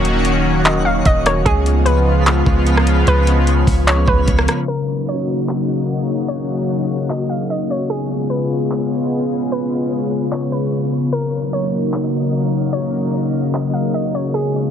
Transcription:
Already playing: D#1 D#3 F#3 A#3 C#4 D#4 F#4 C#5 F#5
0.05 closed hi-hat
0.25 closed hi-hat
0.65 D#5, clap, closed hi-hat
0.85 F5
1.05 D#1 D#5, kick, closed hi-hat
1.26 C#5, cross-stick, closed hi-hat
1.46 C#2 C#3 F3 G#3 B3 C#4 F4 G#4 B4 F5, kick, closed hi-hat
1.66 closed hi-hat
1.86 B4, closed hi-hat
2.27 clap, closed hi-hat
2.46 C#2, kick
2.67 closed hi-hat
2.77 cross-stick
2.87 closed hi-hat
3.07 C#2 B4, closed hi-hat
3.27 closed hi-hat
3.47 closed hi-hat
3.67 C#2, kick, open hi-hat
3.87 C#5, clap, closed hi-hat
4.08 C#2 B4, kick
4.28 C#2, kick, closed hi-hat
4.39 cross-stick
4.48 cross-stick, closed hi-hat
4.68 C#3 F#3 A#3 C#4 D#4 F#4 A#4 D#5
5.09 C#5
5.49 clap
6.28 C#5
7.10 D#5, clap
7.29 F5
7.50 D#5
7.71 C#5
7.90 C#3 G#3 B3 F4 G#4 C#5
8.30 B4
8.71 clap
9.52 B4
10.12 open hi-hat
10.32 C#5, clap
10.52 B4
11.13 F#3 A#3 C#4 D#4 F#4 A#4 D#5
11.53 C#5
11.94 clap
12.73 C#5
13.54 D#5, clap
13.73 F5
13.94 D#5
14.15 C#5
14.34 G#3 B3 F4 G#4 B4 C#5

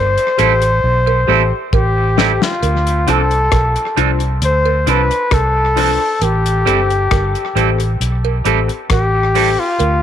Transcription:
Already playing: G1 C5
0.18 closed hi-hat
0.37 A1 G3 C4 E4 G4 A4 C5, closed hi-hat
0.62 muted clean electric guitar stroke, closed hi-hat
0.84 B1
1.06 muted clean electric guitar stroke, cowbell
1.27 A1 G3 C4 E4 G4 A4 C5
1.73 A1 G4, kick, cowbell
2.17 G3 C4 E4 G4 A4 C5, snare
2.42 F4, snare
2.63 D2, closed hi-hat, cowbell
2.87 closed hi-hat
3.07 C2 F3 C4 D4 F4 A4 C5, closed hi-hat
3.31 closed hi-hat
3.52 B1, kick, cross-stick, closed hi-hat, cowbell
3.76 closed hi-hat
3.96 C2 F3 C4 D4 F4 A4 C5, closed hi-hat
4.20 closed hi-hat
4.42 D2 C5, closed hi-hat
4.65 cowbell
4.87 C2 F3 C4 D4 F4 A4 B4 C5, closed hi-hat
5.11 muted clean electric guitar stroke, closed hi-hat
5.31 C2 A4, kick, cross-stick, closed hi-hat, cowbell
5.76 F3 C4 D4 F4 A4 C5, open hi-hat
6.21 A1 G4, closed hi-hat, cowbell
6.46 closed hi-hat
6.66 G1 G3 C4 E4 G4 A4, closed hi-hat
6.90 closed hi-hat
7.11 G1, kick, cross-stick, closed hi-hat, cowbell
7.35 closed hi-hat
7.55 A1 G3 C4 E4 G4 A4, closed hi-hat
7.80 closed hi-hat
8.00 B1, closed hi-hat
8.25 cowbell
8.45 A1 G3 C4 E4 G4 A4, closed hi-hat
8.68 muted clean electric guitar stroke, closed hi-hat
8.90 A1 G4, kick, cross-stick, closed hi-hat, cowbell
9.35 G3 C4 E4 G4 A4, open hi-hat
9.59 F4
9.79 D2, closed hi-hat, cowbell

